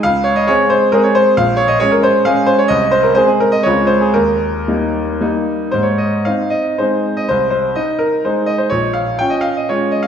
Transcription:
\new Staff \with { instrumentName = "Grand piano" } { \time 3/4 \key aes \major \tempo 4 = 124 << { f''8 des''16 ees''16 des''8 c''8 bes'16 des''16 c''8 | f''8 des''16 ees''16 des''16 bes'16 c''8 f''8 c''16 des''16 | ees''8 c''16 bes'16 c''16 aes'16 bes'16 ees''16 des''8 c''16 aes'16 | bes'2 r4 |
c''16 des''16 ees''8 f''8 ees''8 c''8. ees''16 | c''8 c''8 ees''8 bes'8 c''8 ees''16 c''16 | des''8 f''8 g''16 ees''16 f''16 ees''16 des''8 ees''16 f''16 | } \\ { des,4 <aes c' aes'>4 <aes c' aes'>4 | bes,,4 <aes des' aes'>4 <aes des' aes'>4 | c,4 <aes c' aes'>4 <des, aes c' f'>4 | ees,4 <g bes ees'>4 <g bes ees'>4 |
aes,4 <c' ees'>4 <aes c' ees'>4 | c,4 ees'4 <aes ees'>4 | bes,,4 <des' f'>4 <aes des' f'>4 | } >> }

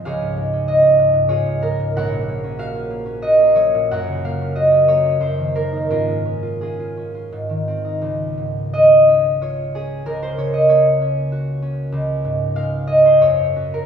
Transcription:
<<
  \new Staff \with { instrumentName = "Harp" } { \time 3/4 \key des \major \tempo 4 = 91 << { f''4 ees''4 des''8 bes'8 | ges''4 f''4 ees''8 des''8 | ges''8 f''8 ees''8 des''8 c''8 bes'8 | bes'4 aes'2~ |
aes'4 ees''4 des''8 aes'8 | bes'16 c''16 des''16 ees''16 des''2~ | des''4 f''8 ees''16 c''16 des''8. bes'16 | } \\ { <f' aes' des''>2 <f' aes'>4 | <bes' des''>2. | <bes' des''>2. | <des' f'>4 <des' f'>4 r4 |
r2. | r2. | r2. | } >> }
  \new Staff \with { instrumentName = "Harp" } { \time 3/4 \key des \major <des, f aes>16 aes,16 aes16 des'16 aes16 aes,16 aes16 aes,16 aes16 aes,16 aes16 aes,16 | bes,,16 bes,16 bes16 des'16 ges'16 des'16 bes16 des'16 ges'16 bes16 ges16 bes,16 | ges,16 des16 bes16 des'16 ges'16 des'16 bes16 des'16 ges,16 ees16 bes16 ees'16 | aes,16 aes16 des'16 f'8 f'16 des'16 f'16 aes,16 ees16 c'16 ees'16 |
des,8 aes,8 aes8 des'8 f'8 des'8 | des,8 des8 bes8 des'8 ges'8 des'8 | des,8 aes,8 aes8 des'8 ges,8 <des' ges'>8 | }
>>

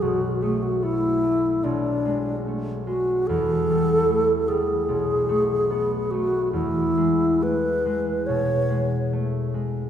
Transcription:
<<
  \new Staff \with { instrumentName = "Alto flute" } { \time 4/4 \key e \mixolydian \tempo 4 = 73 fis'8 gis'16 fis'16 e'4 d'4 r8 fis'8 | a'4. gis'2 fis'8 | e'4 b'4 cis''4 r4 | }
  \new Staff \with { instrumentName = "Harp" } { \clef bass \time 4/4 \key e \mixolydian <b,, a>8 a8 b8 a8 b,,8 gis8 a8 gis8 | e,8 g8 a8 g8 b,,8 a8 b8 a8 | e,8 gis8 a8 gis8 b,8 gis8 a8 gis8 | }
>>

